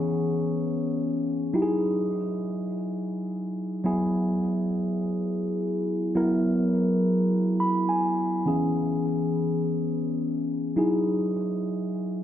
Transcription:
0.00 1.50 E3 medium
0.00 1.50 B3 medium
0.00 1.50 C#4 medium
0.00 1.51 G#4 medium
1.53 3.80 F#3 medium
1.53 3.80 D#4 medium
1.53 3.81 E4 medium
1.53 1.62 G4 medium
1.62 3.85 G#4 medium
3.84 6.11 F#3 medium
3.84 6.11 B3 medium
3.84 6.12 E4 medium
3.84 6.12 G#4 medium
6.15 8.42 F#3 medium
6.15 8.42 B3 medium
6.15 8.42 E4 medium
6.15 8.43 A#4 medium
7.60 7.86 B5 medium
7.89 8.42 G#5 medium
8.46 10.72 E3 medium
8.46 10.73 B3 medium
8.46 10.73 C#4 medium
8.46 10.74 G#4 medium
10.76 12.23 F#3 medium
10.76 12.23 D#4 medium
10.76 12.23 E4 medium
10.76 12.23 G#4 medium

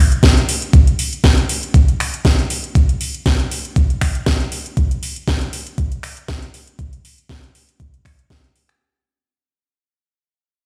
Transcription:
0.12 closed hi-hat soft
0.23 kick loud
0.23 snare loud
0.23 closed hi-hat medium
0.37 closed hi-hat soft
0.49 open hi-hat loud
0.62 closed hi-hat soft
0.73 kick loud
0.73 closed hi-hat medium
0.87 closed hi-hat soft
0.99 open hi-hat loud
1.13 closed hi-hat soft
1.24 kick loud
1.24 snare loud
1.24 closed hi-hat medium
1.38 closed hi-hat soft
1.49 open hi-hat loud
1.63 closed hi-hat soft
1.74 kick loud
1.74 closed hi-hat medium
1.88 closed hi-hat soft
2.00 finger snap medium
2.00 open hi-hat loud
2.14 closed hi-hat soft
2.25 kick loud
2.25 snare loud
2.25 closed hi-hat medium
2.39 closed hi-hat soft
2.50 open hi-hat loud
2.64 closed hi-hat soft
2.75 kick loud
2.75 closed hi-hat medium
2.89 closed hi-hat soft
3.01 open hi-hat loud
3.14 closed hi-hat soft
3.26 kick loud
3.26 snare loud
3.26 closed hi-hat medium
3.40 closed hi-hat soft
3.51 open hi-hat loud
3.65 closed hi-hat soft
3.76 kick loud
3.76 closed hi-hat medium
3.90 closed hi-hat soft
4.01 finger snap medium
4.01 kick medium
4.01 open hi-hat loud
4.15 closed hi-hat soft
4.26 kick loud
4.26 snare loud
4.26 closed hi-hat medium
4.40 closed hi-hat soft
4.52 open hi-hat loud
4.66 closed hi-hat soft
4.77 kick loud
4.77 closed hi-hat medium
4.91 closed hi-hat soft
5.03 open hi-hat loud
5.16 closed hi-hat soft
5.28 kick loud
5.28 snare loud
5.28 closed hi-hat medium
5.41 closed hi-hat soft
5.53 open hi-hat loud
5.67 closed hi-hat soft
5.78 kick loud
5.78 closed hi-hat medium
5.92 closed hi-hat soft
6.03 finger snap medium
6.03 open hi-hat loud
6.17 closed hi-hat soft
6.28 kick loud
6.28 snare loud
6.28 closed hi-hat medium
6.42 closed hi-hat soft
6.54 open hi-hat loud
6.67 closed hi-hat soft
6.79 kick loud
6.79 closed hi-hat medium
6.93 closed hi-hat soft
7.05 open hi-hat loud
7.18 closed hi-hat soft
7.29 kick loud
7.29 snare loud
7.29 closed hi-hat medium
7.44 closed hi-hat soft
7.55 open hi-hat loud
7.69 closed hi-hat soft
7.80 kick loud
7.80 closed hi-hat medium
7.94 closed hi-hat soft
8.05 finger snap medium
8.05 kick medium
8.05 open hi-hat loud
8.19 closed hi-hat soft
8.30 kick loud
8.30 snare loud
8.30 closed hi-hat medium
8.44 closed hi-hat soft
8.56 open hi-hat loud
8.69 finger snap medium
8.69 closed hi-hat soft

